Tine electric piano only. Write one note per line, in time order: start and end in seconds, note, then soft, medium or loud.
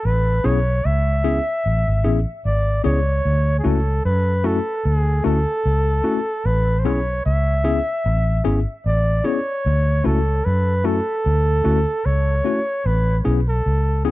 0.44 0.58 B3 loud
0.44 0.58 C#4 medium
0.44 0.58 E4 medium
0.44 0.58 G#4 loud
1.24 1.38 B3 loud
1.24 1.38 C#4 medium
1.24 1.38 E4 medium
1.24 1.38 G#4 loud
2.04 2.18 B3 medium
2.04 2.18 C#4 medium
2.04 2.18 E4 medium
2.04 2.19 G#4 loud
2.84 2.98 B3 loud
2.84 2.98 C#4 medium
2.84 2.98 E4 medium
2.84 2.98 G#4 loud
3.64 3.78 A3 medium
3.64 3.78 C#4 medium
3.64 3.78 E4 medium
3.64 3.79 F#4 loud
4.44 4.58 A3 loud
4.44 4.58 C#4 medium
4.44 4.58 E4 medium
4.44 4.58 F#4 loud
5.24 5.38 A3 loud
5.24 5.38 C#4 medium
5.24 5.38 E4 medium
5.24 5.39 F#4 loud
6.04 6.18 A3 medium
6.04 6.18 C#4 medium
6.04 6.18 E4 medium
6.04 6.18 F#4 loud
6.84 6.99 B3 medium
6.84 6.99 C#4 medium
6.84 6.99 E4 medium
6.84 6.99 G#4 loud
7.64 7.79 B3 medium
7.64 7.79 C#4 medium
7.64 7.79 E4 medium
7.64 7.79 G#4 loud
8.44 8.59 B3 medium
8.44 8.59 C#4 medium
8.44 8.59 E4 medium
8.44 8.59 G#4 loud
9.24 9.39 B3 medium
9.24 9.39 C#4 medium
9.24 9.39 E4 medium
9.24 9.39 G#4 loud
10.04 10.19 A3 loud
10.04 10.19 C#4 medium
10.04 10.19 E4 medium
10.04 10.19 F#4 loud
10.84 10.99 A3 loud
10.84 10.99 C#4 medium
10.84 10.99 E4 medium
10.84 10.99 F#4 loud
11.64 11.79 A3 medium
11.64 11.79 C#4 medium
11.64 11.79 E4 medium
11.64 11.79 F#4 loud
12.44 12.59 A3 medium
12.44 12.59 C#4 medium
12.44 12.59 E4 medium
12.44 12.59 F#4 loud
13.25 13.39 B3 loud
13.25 13.39 C#4 medium
13.25 13.39 E4 medium
13.25 13.39 G#4 loud
14.05 14.11 B3 loud
14.05 14.11 C#4 medium
14.05 14.11 E4 medium
14.05 14.11 G#4 loud